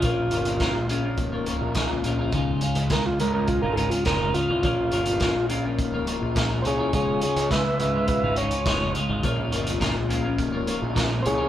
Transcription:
<<
  \new Staff \with { instrumentName = "Transistor combo organ" } { \time 4/4 \key bes \minor \tempo 4 = 104 f'4. r2 r8 | r4 bes'16 f'16 bes'16 bes'16 f'16 bes'16 <a' bes'>16 f'16 bes'8 f'8~ | f'4. r2 <aes' c'' des''>8 | <aes' des''>8 <aes' des''>8 <ces'' fes''>8 <ces'' fes''>8 <ces'' fes''>8 des''4 r8 |
r2. r8 <aes' c'' des''>8 | }
  \new Staff \with { instrumentName = "Clean electric guitar" } { \time 4/4 \key bes \minor <bes, f bes des' f' bes'>8 <bes des' f' bes'>8 <bes, f bes des' f' bes'>8 <bes des' f' bes'>16 <bes des' f' bes'>8 <bes des' f' bes'>16 <bes des' f' bes'>8 <bes, f bes des' f' bes'>16 <bes des' f' bes'>16 <bes des' f' bes'>16 <bes des' f' bes'>16 | <des, aes, des aes f'>8 <aes, des aes f'>8 <des, aes, des aes f'>8 <aes, des aes f'>16 <des aes f'>8 <des aes f'>16 <aes, des aes f'>8 <des, aes, des aes f'>16 <des aes f'>16 <aes, des aes f'>16 <des aes f'>16 | <bes, f bes des' f' bes'>8 <bes des' f' bes'>8 <bes, f bes des' f' bes'>8 <bes des' f' bes'>16 <bes des' f' bes'>8 <bes des' f' bes'>16 <bes des' f' bes'>8 <bes, f bes des' f' bes'>16 <bes des' f' bes'>16 <bes des' f' bes'>16 <bes des' f' bes'>16 | <des, aes, des aes f'>8 <aes, des aes f'>8 <des, aes, des aes f'>8 <aes, des aes f'>16 <des aes f'>8 <des aes f'>16 <aes, des aes f'>8 <des, aes, des aes f'>16 <des aes f'>16 <aes, des aes f'>16 <des aes f'>16 |
<bes, f bes des' f' bes'>8 <bes des' f' bes'>8 <bes, f bes des' f' bes'>8 <bes des' f' bes'>16 <bes des' f' bes'>8 <bes des' f' bes'>16 <bes des' f' bes'>8 <bes, f bes des' f' bes'>16 <bes des' f' bes'>16 <bes des' f' bes'>16 <bes des' f' bes'>16 | }
  \new Staff \with { instrumentName = "Synth drone" } { \clef bass \time 4/4 \key bes \minor des,1~ | des,1~ | des,1 | des,1~ |
des,1 | }
  \new Staff \with { instrumentName = "Picked electric bass" } { \clef bass \time 4/4 \key bes \minor bes,,8 g,,8. bes,,8. des,,8. bes,,8. bes,,8 | des,,8 r16 des,8. des,8 r16 aes,,8 r16 f,,8 r16 c,16 | bes,,8 g,,8. bes,,8. des,,8. bes,,8. c,8 | des,,8 r16 des,8. des,8 r16 aes,,8 r16 f,,8 r16 aes,,16 |
bes,,8 g,,8. bes,,8. des,,8. bes,,8. c,8 | }
  \new DrumStaff \with { instrumentName = "Drums" } \drummode { \time 4/4 <hh bd>8 hh16 hh16 <hh bd sn>8 hh8 <hh bd>8 hh8 <hh bd sn>8 hh8 | <hh bd>8 hh16 hh16 <hh bd sn>8 hh8 <hh bd>8 hh16 hh16 <hh bd sn>8 hh8 | <hh bd>8 hh16 hh16 <hh bd sn>8 hh8 <hh bd>8 hh8 <hh bd sn>8 hh8 | <hh bd>8 hh16 hh16 <hh bd sn>8 hh8 <hh bd>8 hh16 hh16 <hh bd sn>8 hh8 |
<hh bd>8 hh16 hh16 <hh bd sn>8 hh8 <hh bd>8 hh8 <hh bd sn>8 hh8 | }
>>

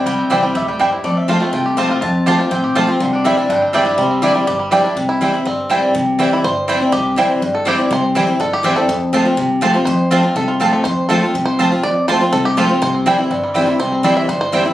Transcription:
<<
  \new Staff \with { instrumentName = "Mandolin" } { \time 4/4 \key c \major \tempo 4 = 245 g''4 g''4 e''8 g''4 r8 | d''8 e''8 f''4 g''4 f''8 f''8 | a''4 g''4 g''4 f''8. r16 | c''8 d''8 e''4 g''4 e''4 |
c''2.~ c''8 r8 | r1 | r1 | r1 |
r1 | r1 | r1 | r1 |
r1 | r1 | r1 | }
  \new Staff \with { instrumentName = "Mandolin" } { \time 4/4 \key c \major r4 <c' e' c'' g''>8 r4. <c' e' c'' g''>8 r8 | r4 <c' f' c'' a''>8 r4. <c' f' c'' a''>8 r8 | r4 <c' f' c'' a''>8 r4. <c' f' c'' a''>8 r8 | r4 <c' e' d'' g''>8 r4. <c' e' d'' g''>8 r8 |
r4 <c' e' d'' g''>8 r4. <c' e' d'' g''>8 r8 | r4 <c' e' c'' g''>8 r4. <c' e' c'' g''>8 r8 | r4 <c' e' c'' g''>8 r4. <c' e' c'' g''>8 r8 | r4 <c' e' c'' g''>8 r4. <c' e' c'' g''>8 r8 |
r4 <c' e' c'' g''>8 r4. <c' e' c'' g''>8 r8 | r4 <c' f' c'' a''>8 r4. <c' f' c'' a''>8 r8 | r4 <c' f' c'' a''>8 r4. <c' f' c'' a''>8 r8 | r4 <c' f' c'' a''>8 r4. <c' f' c'' a''>8 r8 |
r4 <c' f' c'' a''>8 r4. <c' f' c'' a''>8 r8 | r4 <c' e' c'' g''>8 r4. <c' e' c'' g''>8 r8 | r4 <c' e' c'' g''>8 r4. <c' e' c'' g''>8 r8 | }
  \new Staff \with { instrumentName = "Five-string banjo" } { \time 4/4 \key c \major << { r1 | r1 | r1 | r1 |
r1 | r8 e'4. c'4 r4 | r4. e'8 c''2 | g'4 r4. a'8 g'4 |
c''8 r4. a'8 g'4 a'8~ | a'8 r2. r8 | c''2 a'8 f'8 r8 a'8 | c''4 a'4 r8 c''4. |
d''4 c''4 a'8 g'8 f'4 | c''8 r2. r8 | c''4 d''8 e''8 c''8 c''4 r8 | } \\ { <g e' g'>8 c'8 g'8 g8 g'8 g8 g'8 e'8 | a4 f'8 a8 f'8 g'8 c'8 f'8 | f'4 g'8 f'8 c'8 g'8 f'8 c'8 | d8 d'8 g8 c'8 d'8 c'8 g8 g'8 |
g8 c'8 g'8 g8 g'8 g8 g'8 d'8 | r1 | r1 | r1 |
r1 | r1 | r1 | r1 |
r1 | r8 c'8 e8 e'8 c'8 g8 c'8 e'8~ | e'8 c'4. r4 c'8 e'8 | } >> }
  \new Staff \with { instrumentName = "Steel-string acoustic guitar" } { \time 4/4 \key c \major << { r4 <e g c' e'>8 <c' e'>8 r2 | r4 <f a c' f'>8 <c' f'>8 r4 <f a c' f'>4 | r4 <f a c' f'>8 <c' f'>8 r4 <f a c' f'>8 <c' f'>8 | r4 <e g d' e'>8 <d' e'>8 r4 <e g d' e'>8 <d' e'>8 |
r4 <e g d' e'>8 <d' e'>8 r4 <e g d' e'>8 <d' e'>8 | r4 <e g c' e'>8 <c' e'>8 r4 <e g c' e'>4 | r4 <e g c' e'>4 r4 <e g c' e'>8 <c' e'>8 | r4 <e g c' e'>4 r4 <e g c' e'>8 <c' e'>8 |
r4 <e g c' e'>8 <c' e'>8 r4 <e g c' e'>8 <c' e'>8 | r4 <f a c' f'>8 <c' f'>8 r4 <f a c' f'>8 <c' f'>8 | r4 <f a c' f'>8 <c' f'>8 r4 <f a c' f'>4 | r4 <f a c' f'>8 <c' f'>8 r4 <f a c' f'>8 <c' f'>8 |
r4 <f a c' f'>8 <c' f'>8 r4 <f a c' f'>8 <c' f'>8 | r4 <e g c' e'>8 <c' e'>8 r4 <e g c' e'>8 <c' e'>8 | r4 <e g c' e'>4 r4 <e g c' e'>8 <c' e'>8 | } \\ { c2 a,4 g,4 | f,2 c2 | f,2 c2 | c2 g,2 |
c2 g,2 | c2 g,2 | c2 g,2 | c2 g,2 |
c2 g,2 | f,2 c2 | f,2 c2 | f,2 c2 |
f,2 c2 | c2 g,2 | c2 g,2 | } >> }
  \new Staff \with { instrumentName = "Upright bass" } { \clef bass \time 4/4 \key c \major c,4 c,4 d,4 e,4 | f,2 c,2 | f,2 a,,4 b,,4 | c,2 g,,2 |
c,2 g,,2 | c,2 g,,2 | c,2 g,,2 | c,2 g,,2 |
c,2 g,,2 | f,2 c,2 | f,2 c,2 | f,2 c,2 |
f,2 c,2 | c,2 g,,2 | c,2 g,,2 | }
>>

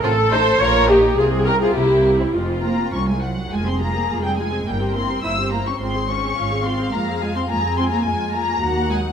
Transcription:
<<
  \new Staff \with { instrumentName = "Violin section" } { \time 2/4 \key f \minor \tempo 4 = 105 c'8 ees'8 f'8 bes8 | c'8 des'16 c'16 bes8. g16 | aes8 bes''8 des'''16 aes''16 ges''8 | aes''16 c'''16 bes''8. g''16 aes''8 |
g''8 c'''8 e'''8 bes''16 des'''16 | c'''8 des'''4 c'''8 | bes''8 aes''16 c'''16 bes''8 c'''16 bes''16 | \key ees \minor aes''8 bes''4 aes''8 | }
  \new Staff \with { instrumentName = "Violin section" } { \time 2/4 \key f \minor f'8 a'8 bes'8 ees'8 | f'8 g'16 f'16 e'8. c'16 | c'4. r8 | aes'2 |
bes'4 c''4 | c''4 f''4~ | f''4 aes''4~ | \key ees \minor aes''4 ges''4 | }
  \new Staff \with { instrumentName = "Viola section" } { \time 2/4 \key f \minor << { a'8 c''8 des''8 g'8 | aes'8 bes'16 aes'16 g'8. e'16 | f'4. r8 | f'16 aes'16 f'16 aes'16 f'16 aes'16 f'16 aes'16 |
e'16 g'16 e'16 g'16 e'16 g'16 e'16 g'16 | f'16 aes'16 f'16 aes'16 f'16 aes'16 f'16 aes'16 | f'16 aes'16 f'16 aes'16 f'16 aes'16 f'16 aes'16 | \key ees \minor f'4 ges'8 ees'8 | } \\ { r2 | r2 | r2 | aes16 c'16 aes16 c'16 aes16 c'16 aes16 c'16 |
bes16 c'16 bes16 c'16 bes16 c'16 bes16 c'16 | aes16 c'16 aes16 c'16 aes16 c'16 aes16 c'16 | aes16 c'16 aes16 c'16 aes16 c'16 aes16 c'16 | aes4 ges4 | } >> }
  \new Staff \with { instrumentName = "Cello section" } { \time 2/4 \key f \minor << { r2 | r2 | r8 bes8 des'16 aes16 ges8 | aes16 c'16 bes8. g16 aes8 |
g8 c'8 e'8 bes16 des'16 | c'8 des'4 c'8 | bes8 aes16 c'16 bes8 c'16 bes16 | \key ees \minor aes8 bes4 aes8 | } \\ { a,4 bes,4 | c4 c4 | f,8 r8 c,4 | r2 |
r2 | r2 | r2 | r2 | } >> }
  \new Staff \with { instrumentName = "Double bass section" } { \clef bass \time 2/4 \key f \minor a,,4 bes,,4 | c,4 c,4 | f,,4 c,4 | f,,4 f,,4 |
g,,4 g,,4 | aes,,4 aes,,4 | f,4 f,4 | \key ees \minor f,4 ees,4 | }
>>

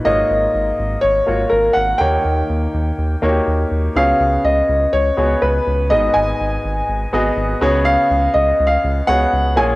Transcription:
<<
  \new Staff \with { instrumentName = "Grand piano" } { \time 4/4 \key cis \mixolydian \tempo 4 = 123 dis''2 cis''4 ais'8 fis''8 | g''2. r4 | eis''4 dis''4 cis''4 b'4 | dis''8 gis''2. r8 |
eis''4 \tuplet 3/2 { dis''4 eis''8~ } eis''8 fis''4 gis''8 | }
  \new Staff \with { instrumentName = "Grand piano" } { \time 4/4 \key cis \mixolydian <ais eis' fis' cis''>2 r8 <ais eis' fis' cis''>4. | <ais dis' g' cis''>2 r8 <ais dis' fis' g' cis''>4. | <b eis' fis' gis' cis''>2 r8 <b fis' gis' cis''>4. | <b fis' gis' dis''>2 r8 <b fis' gis' dis''>4 <b fis' gis' cis''>8~ |
<b fis' gis' cis''>4. r4 <b fis' gis' cis''>4 <ais eis' gis' cis''>8 | }
  \new Staff \with { instrumentName = "Grand piano" } { \clef bass \time 4/4 \key cis \mixolydian gis,4. r2 r8 | dis4. r2 r8 | cis4. r2 r8 | gis,4. r2 cis8~ |
cis4 r2 r8 ais,8 | }
  \new Staff \with { instrumentName = "Analog synth bass" } { \clef bass \time 4/4 \key cis \mixolydian gis,,8 gis,,8 gis,,8 gis,,8 gis,,8 gis,,8 gis,,8 gis,,8 | dis,8 dis,8 dis,8 dis,8 dis,8 dis,8 dis,8 dis,8 | cis,8 cis,8 cis,8 cis,8 cis,8 cis,8 cis,8 cis,8 | gis,,8 gis,,8 gis,,8 gis,,8 gis,,8 gis,,8 gis,,8 cis,8~ |
cis,8 cis,8 cis,8 cis,8 cis,8 cis,8 cis,8 ais,,8 | }
>>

